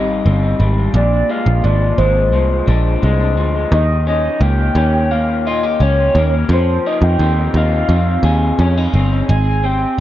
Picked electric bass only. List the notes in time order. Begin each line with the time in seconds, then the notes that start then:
Already playing: G#1
0.26 G1
0.60 G#1
0.94 A#1
1.46 A#1
1.64 G#1
1.98 G#1
2.33 C2
2.68 A#1
3.03 C2
3.37 D2
3.72 D#2
4.41 C#2
4.75 D#2
5.80 C#2
6.15 D#2
6.49 F2
7.02 F2
7.19 D#2
7.54 D#2
7.89 F2
8.23 D#2
8.59 F2
8.94 G1
9.29 G#1